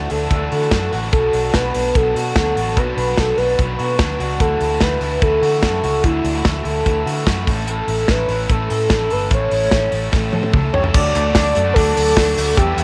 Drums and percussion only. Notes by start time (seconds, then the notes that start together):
0.10 open hi-hat
0.31 kick, closed hi-hat
0.52 open hi-hat
0.71 kick, snare, closed hi-hat
0.93 open hi-hat
1.13 kick, closed hi-hat
1.33 open hi-hat
1.54 kick, snare, closed hi-hat
1.74 open hi-hat
1.95 kick, closed hi-hat
2.16 open hi-hat
2.36 kick, snare, closed hi-hat
2.57 open hi-hat
2.77 kick, closed hi-hat
2.98 open hi-hat
3.17 kick, snare, closed hi-hat
3.38 open hi-hat
3.59 kick, closed hi-hat
3.79 open hi-hat
3.99 kick, snare, closed hi-hat
4.20 open hi-hat
4.40 kick, closed hi-hat
4.61 open hi-hat
4.81 kick, snare, closed hi-hat
5.01 open hi-hat
5.22 kick, closed hi-hat
5.43 open hi-hat
5.63 kick, snare, closed hi-hat
5.84 open hi-hat
6.04 kick, closed hi-hat
6.25 open hi-hat
6.45 kick, snare, closed hi-hat
6.65 open hi-hat
6.86 kick, closed hi-hat
7.07 open hi-hat
7.27 kick, snare, closed hi-hat
7.47 kick, open hi-hat
7.68 closed hi-hat
7.88 open hi-hat
8.08 kick, snare, closed hi-hat
8.29 open hi-hat
8.50 kick, closed hi-hat
8.70 open hi-hat
8.90 kick, snare, closed hi-hat
9.10 open hi-hat
9.31 kick, closed hi-hat
9.51 open hi-hat
9.71 kick, snare, closed hi-hat
9.92 open hi-hat
10.12 kick, snare
10.33 high tom
10.43 high tom
10.54 kick, mid tom
10.74 floor tom
10.84 floor tom
10.94 kick, crash
11.15 clap, hi-hat pedal, open hi-hat
11.35 kick, snare, clap, hi-hat pedal, open hi-hat
11.55 hi-hat pedal, open hi-hat
11.76 kick, hi-hat pedal, open hi-hat
11.97 hi-hat pedal, open hi-hat
12.17 kick, snare, clap, hi-hat pedal, open hi-hat
12.38 hi-hat pedal, open hi-hat
12.57 kick, hi-hat pedal, open hi-hat
12.78 clap, hi-hat pedal, open hi-hat